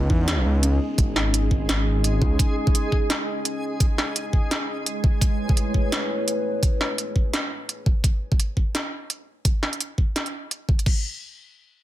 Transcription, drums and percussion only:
0.10 kick
0.28 snare, closed hi-hat
0.63 closed hi-hat
0.98 kick, closed hi-hat
1.16 snare
1.34 closed hi-hat
1.51 kick
1.69 snare, closed hi-hat
2.04 closed hi-hat
2.22 kick
2.39 kick, closed hi-hat
2.67 kick
2.75 closed hi-hat
2.92 kick
3.10 snare, closed hi-hat
3.45 closed hi-hat
3.80 kick, closed hi-hat
3.98 snare
4.16 closed hi-hat
4.33 kick
4.51 snare, closed hi-hat
4.86 closed hi-hat
5.04 kick
5.21 kick, closed hi-hat
5.49 kick
5.57 closed hi-hat
5.74 kick
5.92 snare, closed hi-hat
6.28 closed hi-hat
6.63 kick, closed hi-hat
6.81 snare
6.98 closed hi-hat
7.16 kick
7.33 snare, closed hi-hat
7.69 closed hi-hat
7.86 kick
8.04 kick, closed hi-hat
8.32 kick
8.40 closed hi-hat
8.57 kick
8.75 snare, closed hi-hat
9.10 closed hi-hat
9.45 kick, closed hi-hat
9.63 snare
9.73 closed hi-hat
9.81 closed hi-hat
9.98 kick
10.16 snare, closed hi-hat
10.26 closed hi-hat
10.51 closed hi-hat
10.69 kick
10.79 closed hi-hat
10.86 kick, crash

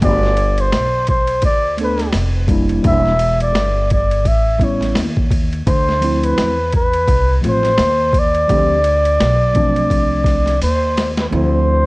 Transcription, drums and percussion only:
0.02 kick, ride
0.23 snare
0.37 ride
0.58 ride
0.72 snare, hi-hat pedal, ride
1.07 kick, ride
1.27 ride
1.42 kick, ride
1.78 ride
1.98 snare, ride
2.13 snare, hi-hat pedal, ride
2.48 kick, ride
2.69 ride
2.84 kick, ride
3.06 snare
3.19 ride
3.40 ride
3.55 snare, hi-hat pedal, ride
3.90 kick, ride
4.11 ride
4.25 kick, ride
4.60 kick, ride
4.81 snare, ride
4.95 snare, hi-hat pedal, ride
5.17 kick
5.31 kick, ride
5.53 ride
5.67 kick, ride
5.89 snare
6.02 ride
6.23 ride
6.38 snare, hi-hat pedal, ride
6.72 kick, ride
6.93 ride
7.08 kick, ride
7.44 ride
7.63 snare, ride
7.78 snare, hi-hat pedal, ride
8.13 kick, ride
8.35 ride
8.49 kick, ride
8.84 ride
9.05 ride
9.21 snare, hi-hat pedal, ride
9.55 kick, ride
9.76 ride
9.90 kick, ride
10.24 kick, snare, ride
10.46 snare, ride
10.62 hi-hat pedal, ride
10.97 snare, ride
11.17 snare, ride

